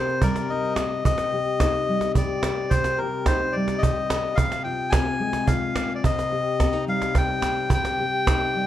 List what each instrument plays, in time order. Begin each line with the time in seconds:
Already playing: nylon-string guitar C3 C4 G4 A#4, melodica C5
0.08 cajon slap
0.22 nylon-string guitar G3, melodica A#4 D5, cajon bass
0.36 cajon slap
0.49 nylon-string guitar D#4, melodica D#5, cajon slap
0.63 cajon slap
0.76 cajon slap
1.05 nylon-string guitar C3, melodica D#5, cajon bass
1.18 cajon slap
1.33 nylon-string guitar G4
1.60 nylon-string guitar D#4, cajon bass, cajon slap
1.89 nylon-string guitar G3
2.01 cajon slap
2.15 nylon-string guitar G4, melodica D5, cajon bass
2.43 cajon slap
2.70 nylon-string guitar C3, melodica C5, cajon bass
2.84 cajon slap
2.98 nylon-string guitar G4, melodica A#4
3.26 nylon-string guitar D#4, melodica C5, cajon bass, cajon slap
3.52 nylon-string guitar G3, melodica D5
3.68 cajon slap
3.78 melodica D#5
3.83 nylon-string guitar G4, cajon bass
4.10 cajon slap
4.35 nylon-string guitar C3, melodica F5, cajon bass
4.52 cajon slap
4.64 nylon-string guitar F4, melodica G5
4.90 nylon-string guitar C4, melodica G#5, cajon bass, cajon slap
5.20 nylon-string guitar G#3
5.33 cajon slap
5.47 nylon-string guitar F4, melodica F5, cajon bass
5.76 cajon slap
5.95 melodica D5
6.04 nylon-string guitar C3, melodica D#5, cajon bass
6.19 cajon slap
6.32 nylon-string guitar G4
6.59 nylon-string guitar C4, cajon bass, cajon slap
6.73 nylon-string guitar D#4
6.87 nylon-string guitar G3, melodica F5, cajon slap
7.02 cajon slap
7.15 nylon-string guitar G4, melodica G5, cajon bass, cajon slap
7.42 cajon slap
7.70 nylon-string guitar C3, melodica G5, cajon bass
7.85 cajon slap
8.00 nylon-string guitar G4
8.27 nylon-string guitar D#4, cajon bass, cajon slap
8.55 nylon-string guitar G3